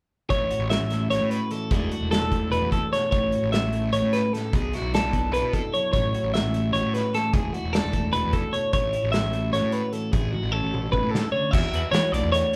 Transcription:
0.30 A1 A2 C#5, kick, closed hi-hat
0.51 F#4, closed hi-hat
0.59 A1
0.70 C#4 E5, snare, closed hi-hat
0.80 A1
0.90 A3, snare, closed hi-hat
1.10 A1 F#4 C#5, snare, closed hi-hat
1.20 A2
1.30 B4 C#5, closed hi-hat
1.51 E3 A4, closed hi-hat
1.71 E1 E3 A3 D4 F#4 G#4 A4, kick, closed hi-hat
1.91 F#4, closed hi-hat
2.01 E1
2.11 D4 A4, snare, closed hi-hat
2.21 E1
2.32 A3, kick, closed hi-hat
2.51 E1 F#4 B4, closed hi-hat
2.62 E2
2.72 A4, kick, closed hi-hat
2.93 B2 C#5, snare, closed hi-hat
3.11 A1 A2 C#5, kick, closed hi-hat
3.32 F#4, closed hi-hat
3.42 A1
3.52 C#4 E5, snare, closed hi-hat
3.63 A1
3.73 A3, closed hi-hat
3.93 A1 C#5, closed hi-hat
4.02 A2
4.13 B4, snare, closed hi-hat
4.33 A2 A4, snare, closed hi-hat
4.53 B1 B2 G#4, kick, closed hi-hat
4.73 E4 F#4, snare, closed hi-hat
4.82 B1
4.93 D4 A4, snare, closed hi-hat
5.02 B1
5.13 B3, kick, closed hi-hat
5.31 B1 E4 B4, closed hi-hat
5.42 B2
5.53 A4, kick, closed hi-hat
5.73 F#3 C#5, closed hi-hat
5.93 A1 A2 C#5, kick, closed hi-hat
6.14 F#4, closed hi-hat
6.23 A1
6.34 C#4 E5, snare, closed hi-hat
6.42 A1
6.54 A3, closed hi-hat
6.73 A1 F#4 C#5, closed hi-hat
6.82 A2
6.94 B4 C#5, snare, closed hi-hat
7.14 E3 A4, snare, closed hi-hat
7.33 E1 E3 G#4, kick, closed hi-hat
7.54 E4 F#4, closed hi-hat
7.64 E1 F#4
7.73 D4 A4, snare, closed hi-hat
7.84 E1
7.93 A3, kick, closed hi-hat
8.13 E1 F#4 B4, closed hi-hat
8.24 E2
8.33 A4, kick, closed hi-hat
8.53 B2 C#5, closed hi-hat
8.73 A1 A2 C#5, kick, closed hi-hat
8.93 E4, closed hi-hat
9.03 A1 F#4
9.12 C#4 E5, snare, closed hi-hat
9.23 A1
9.33 A3, closed hi-hat
9.53 A1 F#4 C#5, snare, closed hi-hat
9.62 A2
9.72 B4 C#5, closed hi-hat
9.93 E3 A4, closed hi-hat
10.12 A1 A2 G#4, kick, closed hi-hat
10.32 F#4, high tom
10.43 A1
10.52 C#4 A4
10.63 A1
10.73 A3, mid tom
10.92 A1 B2 B4, kick
11.03 A2
11.11 C#3 A4, snare
11.32 D3 C#5
11.51 E2 E3 F#4 E5, kick, crash
11.73 E2 B4, closed hi-hat
11.91 E3 F#4 C#5, snare, closed hi-hat
12.12 B1 A3 D4 D5, closed hi-hat
12.23 E2
12.32 F#4 C#5, closed hi-hat

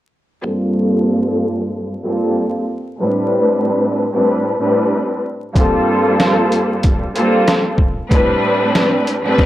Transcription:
0.43 G2 G3 A#3 C4 F4 A4
2.04 G2 G3 A#3 C4 F4 A4
3.00 A2 G3 C4 D4 B4
4.13 A2 G3 C4 D4 B4
4.60 A2 G3 C4 D4 B4
5.54 G2 G3 A#3 C4 F4 A4, kick, closed hi-hat
6.20 cross-stick, snare, closed hi-hat
6.52 closed hi-hat
6.83 kick, closed hi-hat
7.15 G2 G3 A#3 C4 F4 A4, closed hi-hat
7.48 cross-stick, snare, closed hi-hat
7.78 kick
8.10 A2 G3 C4 D4 B4, kick, closed hi-hat
8.75 cross-stick, snare, closed hi-hat
9.07 closed hi-hat
9.23 A2 G3 C4 D4 B4
9.38 kick, snare

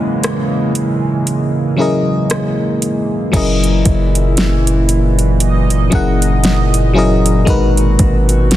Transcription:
Already playing: C#3 E3 F#3 G#3 A#3 C#4 E4 G#4 A#4 C#5 D#5 F#5
0.24 cross-stick, closed hi-hat
0.75 closed hi-hat
1.27 closed hi-hat
1.76 F#3 C#4 E4 G#4 A#4
1.81 D#5
2.30 cross-stick, closed hi-hat
2.82 closed hi-hat
3.32 F#1 A#2 E3 F#3 C#4 E4 G#4 A#4, kick, closed hi-hat, crash
3.37 D#5
3.64 closed hi-hat
3.85 F#1, kick, closed hi-hat
4.15 closed hi-hat
4.37 snare, closed hi-hat
4.67 closed hi-hat
4.89 closed hi-hat
5.19 closed hi-hat
5.40 D#5, closed hi-hat
5.70 closed hi-hat
5.90 F#1 F#3 C#4 E4 G#4 A#4, kick, closed hi-hat
5.95 F#5
6.22 closed hi-hat
6.44 snare, closed hi-hat
6.74 closed hi-hat
6.93 F#3 C#4 E4 G#4
6.97 A#4 D#5
7.26 closed hi-hat
7.45 G#1 B2 G#3 D#4 F#4 A#4, kick, closed hi-hat
7.50 B4
7.77 closed hi-hat
7.99 G#1, kick, closed hi-hat
8.29 closed hi-hat
8.51 snare, closed hi-hat

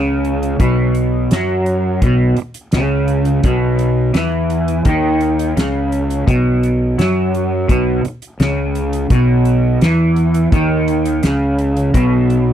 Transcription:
Already playing: C#2 C#3
0.25 closed hi-hat
0.43 closed hi-hat
0.60 B1 B2, kick, closed hi-hat
0.95 closed hi-hat
1.31 F#2 F#3, snare, closed hi-hat
1.66 closed hi-hat
2.02 B1 B2, kick, closed hi-hat
2.37 muted fingered electric bass stroke, muted clean electric guitar stroke, closed hi-hat
2.54 closed hi-hat
2.72 C#2 C#3, snare, closed hi-hat
3.08 closed hi-hat
3.25 closed hi-hat
3.44 B1 B2, kick, closed hi-hat
3.79 closed hi-hat
4.14 E2 E3, snare, closed hi-hat
4.50 closed hi-hat
4.68 closed hi-hat
4.85 D#2 D#3, kick, closed hi-hat
5.21 closed hi-hat
5.39 closed hi-hat
5.57 C#2 C#3, snare, closed hi-hat
5.92 closed hi-hat
6.10 closed hi-hat
6.27 B1 B2, kick, closed hi-hat
6.63 closed hi-hat
6.98 F#2 F#3, snare, closed hi-hat
7.35 closed hi-hat
7.68 B1 B2, kick, closed hi-hat
8.05 muted fingered electric bass stroke, muted clean electric guitar stroke, closed hi-hat
8.22 closed hi-hat
8.40 C#2 C#3, snare, closed hi-hat
8.75 closed hi-hat
8.93 closed hi-hat
9.10 B1 B2, kick, closed hi-hat
9.45 closed hi-hat
9.81 E2 E3, snare, closed hi-hat
10.16 closed hi-hat
10.34 closed hi-hat
10.52 D#2 D#3, kick, closed hi-hat
10.88 closed hi-hat
11.05 closed hi-hat
11.23 C#2 C#3, snare, closed hi-hat
11.58 closed hi-hat
11.77 closed hi-hat
11.94 B1 B2, kick, closed hi-hat
12.30 closed hi-hat

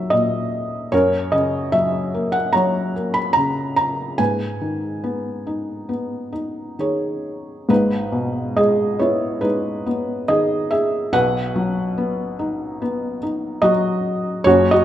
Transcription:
Already playing: D#2 A#2 D#3 F#3 E5
0.10 A#2 D#5
0.92 F#2 A#4 C#5
1.32 C#3 D#5
1.72 F#3 E5
2.14 A#3
2.32 F#5
2.53 F#3 C#5 A#5
2.96 A#3
3.14 B5
3.33 C#3 A#5
3.76 A#5
4.18 G#2 B4 G#5
4.61 D#3
5.04 B3
5.47 D#4
5.89 B3
6.33 D#4
6.79 D#3 G#4 C#5
7.69 G#1 G#2 D#4 B4
8.12 B2
8.56 G#3 G#4 D#5
8.99 B3 E4 C#5
9.41 G#3 D#4 B4
9.86 B3
10.28 D#3 G#4 D#5
10.71 G#4 E5
11.13 B1 B2 B4 F#5
11.56 F#3
11.98 B3
12.39 D#4
12.82 B3
13.23 D#4
13.62 F#3 F#4 D#5
14.44 F#1 F#2 F#4 C#5
14.71 F#4 D#5

